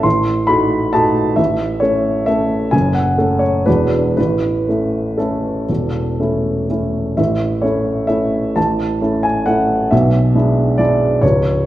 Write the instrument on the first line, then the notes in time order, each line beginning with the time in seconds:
upright piano
0.03 A1 A2 C6
0.47 A3 D#4 F#4 B5
0.93 A3 D#4 F#4 A5
1.36 A1 A2 E5
1.80 A3 C#4 A4 C#5
2.26 A3 C#4 A4 E5
2.71 F#1 F#2 G#5
2.94 F#5
3.18 A3 C#4 A4
3.39 C#5
3.66 E1 E2 G#3 D4 F#4 B4
4.17 A1 A2 B4
4.69 A3 C#4 E4
5.18 A3 C#4 E4 A4
5.69 E1 E2
6.20 A3 C#4 E4
6.69 A3 C#4 E4
7.17 A1 A2 E5
7.62 A3 C#4 E4 C#5
8.07 A3 C#4 E4 E5
8.56 A1 A2 A5
9.01 A3 C#4 E4
9.23 G#5
9.46 A3 C#4 E4 F#5
9.91 B1 B2 E5
10.35 G#3 D4 E4
10.78 G#3 D4 E4 D5
11.21 C#1 C#2 C#5